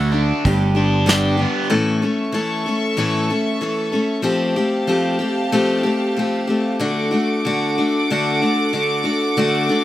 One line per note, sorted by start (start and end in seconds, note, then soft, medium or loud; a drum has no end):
0.00 0.31 D2 medium
0.00 0.13 D3 medium
0.00 0.13 A3 medium
0.00 0.46 A3 medium
0.00 0.12 D4 loud
0.00 0.10 F#4 medium
0.12 0.46 A3 soft
0.12 0.45 D4 medium
0.12 0.44 F#4 medium
0.45 1.45 G1 loud
0.45 1.73 G2 medium
0.45 0.76 G3 medium
0.45 0.75 B3 medium
0.45 0.75 D4 medium
0.45 0.74 G4 medium
0.45 kick medium
0.45 open hi-hat soft
0.75 1.06 G3 soft
0.75 1.06 B3 soft
0.75 1.06 D4 soft
0.75 1.06 G4 medium
1.06 1.39 G2 medium
1.06 1.39 D3 medium
1.06 1.38 G3 medium
1.06 1.38 B3 medium
1.06 1.36 D4 medium
1.06 1.36 G4 loud
1.06 snare loud
1.06 open hi-hat soft
1.37 1.70 G3 soft
1.37 1.70 B3 soft
1.37 1.70 D4 soft
1.37 1.70 G4 medium
1.70 2.03 A2 medium
1.70 2.03 E3 medium
1.70 2.03 A3 medium
1.70 2.02 C#4 medium
1.70 2.01 A4 medium
1.70 4.26 A4 medium
1.70 4.25 E5 medium
1.70 4.26 C#6 medium
2.02 2.33 A3 soft
2.02 2.33 C#4 medium
2.02 2.33 A4 medium
2.32 2.66 E3 medium
2.32 2.67 A3 medium
2.32 2.67 C#4 medium
2.32 2.65 A4 medium
2.66 2.97 A3 soft
2.66 2.98 C#4 medium
2.66 2.98 A4 medium
2.97 3.31 A2 medium
2.97 3.31 E3 medium
2.97 3.31 A3 loud
2.97 3.30 C#4 medium
2.97 3.29 A4 loud
3.30 3.61 A3 medium
3.30 3.60 C#4 medium
3.30 3.62 A4 medium
3.61 3.94 E3 medium
3.61 3.94 A3 medium
3.61 3.92 C#4 medium
3.61 3.91 A4 medium
3.92 4.22 A3 medium
3.92 4.23 C#4 medium
3.92 4.24 A4 medium
4.22 4.57 F3 medium
4.22 4.57 A3 medium
4.22 4.56 C4 loud
4.22 4.55 G4 loud
4.22 6.79 G4 medium
4.22 6.79 F5 medium
4.22 6.79 A5 loud
4.56 4.87 A3 medium
4.56 4.87 C4 medium
4.56 4.88 G4 medium
4.87 5.21 F3 medium
4.87 5.20 A3 medium
4.87 5.19 C4 medium
4.87 5.18 G4 medium
5.19 5.51 A3 soft
5.19 5.52 C4 medium
5.19 5.53 G4 medium
5.52 5.86 F3 medium
5.52 5.85 A3 medium
5.52 5.83 C4 loud
5.52 5.82 G4 loud
5.83 6.16 A3 soft
5.83 6.17 C4 soft
5.83 6.17 G4 medium
6.17 6.49 F3 medium
6.17 6.49 A3 medium
6.17 6.48 C4 medium
6.17 6.46 G4 medium
6.47 6.79 A3 medium
6.47 6.80 C4 soft
6.47 6.80 G4 medium
6.80 7.13 D3 medium
6.80 7.13 A3 loud
6.80 7.11 D4 medium
6.80 7.10 F#4 loud
6.80 9.84 A4 medium
6.80 9.84 F#5 medium
6.80 9.84 D6 loud
7.11 7.45 A3 medium
7.11 7.45 D4 medium
7.11 7.44 F#4 medium
7.45 7.77 D3 medium
7.45 7.78 A3 medium
7.45 7.77 D4 medium
7.45 7.77 F#4 medium
7.78 8.09 A3 soft
7.78 8.10 D4 medium
7.78 8.10 F#4 medium
8.10 8.42 D3 medium
8.10 8.42 A3 medium
8.10 8.41 D4 medium
8.10 8.41 F#4 loud
8.42 8.73 A3 soft
8.42 8.73 D4 medium
8.42 8.73 F#4 medium
8.73 9.05 D3 medium
8.73 9.04 A3 medium
8.73 9.04 D4 medium
8.73 9.03 F#4 medium
9.04 9.36 A3 soft
9.04 9.37 D4 medium
9.04 9.36 F#4 medium
9.37 9.69 D3 medium
9.37 9.69 A3 medium
9.37 9.68 D4 loud
9.37 9.68 F#4 loud
9.69 9.84 A3 medium
9.69 9.84 D4 medium
9.69 9.84 F#4 medium